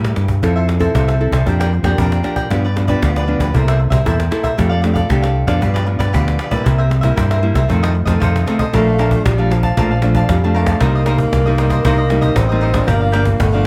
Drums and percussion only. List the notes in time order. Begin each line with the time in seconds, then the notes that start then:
0.04 cajon slap
0.16 cajon slap
0.28 cajon bass
0.43 cajon bass, cajon slap
0.69 cajon slap
0.80 cajon bass
0.95 cajon bass, cajon slap
1.08 cajon slap
1.21 cajon slap
1.32 cajon bass, cajon slap
1.47 cajon bass
1.61 cajon slap
1.72 cajon slap
1.84 cajon bass, cajon slap
1.98 cajon bass
2.12 cajon slap
2.24 cajon slap
2.36 cajon bass
2.51 cajon bass, cajon slap
2.77 cajon slap
2.88 cajon bass
3.02 cajon bass, cajon slap
3.16 cajon slap
3.40 cajon bass, cajon slap
3.54 cajon bass
3.68 cajon slap
3.80 cajon slap
3.92 cajon bass, cajon slap
4.06 cajon bass
4.20 cajon slap
4.32 cajon slap
4.44 cajon bass
4.58 cajon bass, cajon slap
4.84 cajon slap
4.96 cajon bass
5.10 cajon bass, cajon slap
5.24 cajon slap
5.36 cajon slap
5.48 cajon bass, cajon slap
5.62 cajon bass
5.76 cajon slap
5.88 cajon slap
6.00 cajon bass, cajon slap
6.14 cajon bass
6.28 cajon slap
6.39 cajon slap
6.51 cajon bass
6.66 cajon bass, cajon slap
6.91 cajon slap
7.03 cajon bass
7.17 cajon bass, cajon slap
7.31 cajon slap
7.43 cajon slap
7.55 cajon bass, cajon slap
7.70 cajon bass
7.84 cajon slap
7.95 cajon slap
8.07 cajon bass, cajon slap
8.22 cajon bass
8.36 cajon slap
8.48 cajon slap
8.59 cajon bass
8.74 cajon bass, cajon slap
8.99 cajon slap
9.11 cajon bass
9.26 cajon bass, cajon slap
9.51 cajon slap
9.63 cajon bass
9.77 cajon bass, cajon slap
10.02 cajon slap
10.15 cajon bass
10.29 cajon bass, cajon slap
10.66 cajon bass, cajon slap
10.80 cajon bass, cajon slap
11.06 cajon slap
11.18 cajon bass
11.33 cajon bass, cajon slap
11.58 cajon slap
11.70 cajon bass
11.85 cajon bass, cajon slap
12.10 cajon slap
12.22 cajon bass
12.36 cajon bass, cajon slap
12.74 cajon bass, cajon slap
12.88 cajon bass, cajon slap
13.13 cajon slap
13.25 cajon bass
13.40 cajon bass, cajon slap